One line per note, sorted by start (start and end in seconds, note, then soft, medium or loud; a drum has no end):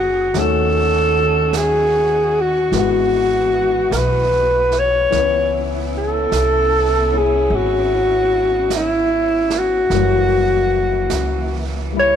0.00 0.30 F#1 medium
0.00 0.32 D3 medium
0.00 0.35 D3 medium
0.00 0.35 A3 soft
0.00 0.32 B3 medium
0.00 0.35 B3 soft
0.00 0.35 C#4 soft
0.00 0.36 F#4 soft
0.00 0.40 F#4 medium
0.00 0.32 G#4 medium
0.34 2.69 D#2 medium
0.34 2.74 D#3 soft
0.34 2.73 D#3 medium
0.34 2.74 A3 soft
0.34 2.74 C#4 soft
0.34 2.73 C#4 medium
0.34 5.10 F#4 medium
0.34 2.75 F#4 medium
0.34 brush sweep soft
0.34 snare soft
0.39 1.56 A4 medium
1.53 brush sweep soft
1.53 snare soft
1.53 hi-hat pedal medium
1.57 2.43 G#4 medium
2.41 2.76 F#4 medium
2.72 3.88 G#1 medium
2.72 5.09 E3 soft
2.72 5.10 E3 medium
2.72 5.13 G#3 soft
2.72 5.09 B3 medium
2.72 5.11 B3 soft
2.72 brush sweep soft
2.72 snare soft
2.77 5.14 F#4 medium
2.77 3.94 F#4 medium
3.91 5.08 B1 medium
3.91 3.98 A#4 medium
3.91 brush sweep soft
3.91 snare soft
3.91 hi-hat pedal soft
3.97 4.80 B4 medium
4.72 snare soft
4.79 5.60 C#5 loud
5.10 6.28 C#2 medium
5.10 9.90 E3 medium
5.10 9.86 B3 medium
5.10 9.91 B3 soft
5.10 9.87 C#4 medium
5.10 7.11 C#4 soft
5.10 9.86 E4 medium
5.10 brush sweep soft
5.10 snare soft
5.16 9.93 B4 medium
5.98 7.20 A4 medium
6.32 7.48 C2 medium
6.32 brush sweep soft
6.32 snare soft
6.32 hi-hat pedal soft
7.13 9.91 C#4 soft
7.13 9.92 E4 soft
7.13 9.92 G#4 soft
7.18 7.57 G#4 medium
7.50 9.86 G#1 medium
7.50 brush sweep soft
7.56 8.73 F#4 medium
8.70 brush sweep soft
8.70 snare soft
8.70 hi-hat pedal medium
8.76 9.60 E4 medium
9.50 snare soft
9.59 11.58 F#4 medium
9.90 11.06 F#1 medium
9.90 12.16 E3 medium
9.90 12.16 E3 soft
9.90 12.16 A#3 medium
9.90 brush sweep soft
9.90 snare soft
9.94 12.16 F#3 medium
9.94 11.91 G3 soft
9.94 12.16 A#3 soft
11.10 12.16 C#2 medium
11.10 brush sweep soft
11.10 snare soft
11.10 hi-hat pedal soft
11.92 12.16 G3 soft
11.92 12.16 E4 soft
11.99 12.16 C#5 loud